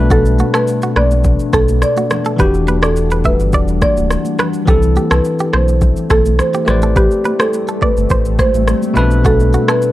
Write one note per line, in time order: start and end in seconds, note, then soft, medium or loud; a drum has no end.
0.00 0.43 B1 loud
0.00 2.05 B2 medium
0.00 2.06 A3 medium
0.00 2.35 A3 medium
0.00 2.36 B3 medium
0.00 2.07 D4 medium
0.00 4.64 D4 medium
0.00 2.11 B4 medium
0.10 0.19 F#4 medium
0.10 0.35 A4 loud
0.10 kick loud
0.10 low conga medium
0.10 shaker medium
0.25 shaker medium
0.39 0.48 F#4 medium
0.39 high conga medium
0.39 shaker medium
0.54 0.62 A4 medium
0.54 0.66 B4 medium
0.54 cross-stick loud
0.54 shaker soft
0.67 shaker medium
0.82 0.90 F#4 medium
0.82 shaker medium
0.96 1.37 B1 medium
0.96 1.05 B4 medium
0.96 1.09 D5 medium
0.96 cross-stick medium
0.96 high conga medium
1.11 shaker medium
1.24 kick loud
1.24 low conga medium
1.24 shaker medium
1.39 shaker medium
1.53 1.84 B1 loud
1.53 1.66 A4 medium
1.53 1.62 A4 medium
1.53 kick loud
1.53 cross-stick medium
1.53 high conga medium
1.53 shaker medium
1.69 high conga medium
1.69 shaker medium
1.82 2.23 D5 medium
1.82 cross-stick medium
1.82 shaker medium
1.97 2.05 F#4 medium
1.97 high conga medium
1.97 shaker medium
2.10 cross-stick loud
2.10 low conga medium
2.10 shaker soft
2.25 2.33 A4 medium
2.25 shaker medium
2.36 3.36 E1 loud
2.36 4.62 E3 medium
2.36 4.65 E3 medium
2.36 4.65 G3 medium
2.36 4.63 D4 medium
2.36 4.64 F#4 medium
2.36 2.64 G4 loud
2.36 2.47 B4 medium
2.36 4.65 F#5 medium
2.36 kick loud
2.36 low conga medium
2.36 shaker medium
2.42 4.65 G4 medium
2.54 shaker soft
2.68 2.76 B4 medium
2.68 high conga medium
2.68 shaker medium
2.83 2.95 A4 medium
2.83 2.90 D5 medium
2.83 cross-stick loud
2.83 shaker soft
2.96 shaker medium
3.11 3.19 B4 medium
3.11 shaker medium
3.24 3.38 B4 medium
3.24 3.33 E5 medium
3.24 kick medium
3.24 high conga medium
3.24 shaker soft
3.40 3.55 G1 medium
3.40 shaker medium
3.53 3.84 E1 loud
3.53 3.69 D5 medium
3.53 kick medium
3.53 low conga medium
3.53 shaker medium
3.68 shaker medium
3.82 3.95 D5 medium
3.82 kick loud
3.82 cross-stick medium
3.82 high conga medium
3.82 shaker medium
3.97 4.17 D1 medium
3.97 high conga medium
3.97 shaker medium
4.11 cross-stick medium
4.11 shaker medium
4.25 high conga medium
4.25 shaker medium
4.39 4.47 B4 medium
4.39 cross-stick loud
4.39 low conga medium
4.39 shaker soft
4.53 shaker medium
4.65 4.98 C2 loud
4.65 6.62 E3 medium
4.65 9.92 A3 medium
4.65 6.63 C4 medium
4.65 6.65 C4 medium
4.65 6.66 E4 medium
4.65 6.64 E4 medium
4.65 4.76 G4 medium
4.65 4.92 A4 medium
4.65 kick loud
4.65 low conga medium
4.65 shaker medium
4.70 6.65 A4 medium
4.82 shaker medium
4.96 5.04 G4 medium
4.96 high conga medium
4.96 shaker medium
5.11 5.21 C2 loud
5.11 5.19 A4 medium
5.11 5.23 B4 medium
5.11 cross-stick loud
5.11 shaker soft
5.25 shaker medium
5.39 5.47 G4 medium
5.39 shaker medium
5.53 5.94 B1 medium
5.53 5.66 C5 medium
5.53 5.62 C5 medium
5.53 cross-stick loud
5.53 high conga medium
5.68 shaker medium
5.81 kick medium
5.81 low conga medium
5.81 shaker medium
5.96 shaker medium
6.10 6.41 B1 medium
6.10 6.23 A4 medium
6.10 6.19 A4 medium
6.10 kick loud
6.10 cross-stick medium
6.10 high conga medium
6.10 shaker medium
6.26 high conga medium
6.26 shaker medium
6.39 6.80 C5 medium
6.39 cross-stick medium
6.39 shaker medium
6.54 6.62 G4 medium
6.54 high conga medium
6.54 shaker medium
6.65 7.08 A1 loud
6.65 8.94 G3 medium
6.65 8.91 A3 medium
6.65 8.94 C4 medium
6.65 8.92 G4 medium
6.65 8.92 B4 medium
6.65 8.93 C5 medium
6.65 cross-stick loud
6.65 low conga medium
6.65 shaker soft
6.70 8.93 D5 medium
6.82 6.90 A4 medium
6.82 shaker medium
6.96 7.21 G4 loud
6.96 7.04 B4 medium
6.96 kick loud
6.96 low conga medium
6.96 shaker medium
7.11 shaker soft
7.24 7.33 B4 medium
7.24 high conga medium
7.24 shaker medium
7.40 7.51 A4 medium
7.40 7.47 C5 medium
7.40 cross-stick loud
7.40 shaker soft
7.53 shaker medium
7.68 7.76 A4 medium
7.68 shaker medium
7.82 7.95 B4 medium
7.82 7.90 D5 medium
7.82 kick medium
7.82 high conga medium
7.97 8.07 G1 loud
7.97 shaker medium
8.10 8.41 A1 loud
8.10 8.26 C5 medium
8.10 kick medium
8.10 low conga medium
8.10 shaker medium
8.25 shaker medium
8.39 8.52 C5 medium
8.39 kick loud
8.39 cross-stick medium
8.39 high conga medium
8.39 shaker medium
8.54 8.74 A1 medium
8.54 high conga medium
8.54 shaker medium
8.68 cross-stick medium
8.68 shaker medium
8.82 high conga medium
8.82 shaker medium
8.94 9.57 B1 medium
8.94 9.92 B2 medium
8.94 9.92 A3 medium
8.94 9.92 B3 medium
8.94 9.92 D4 medium
8.94 9.04 B4 medium
8.94 low conga medium
8.94 shaker soft
8.99 9.92 B4 medium
9.11 shaker medium
9.25 9.33 F#4 medium
9.25 9.50 A4 medium
9.25 kick loud
9.25 low conga medium
9.25 shaker medium
9.40 shaker soft
9.53 9.62 F#4 medium
9.53 high conga medium
9.53 shaker medium
9.68 9.76 A4 medium
9.68 9.80 B4 medium
9.68 cross-stick loud
9.68 shaker soft
9.82 shaker medium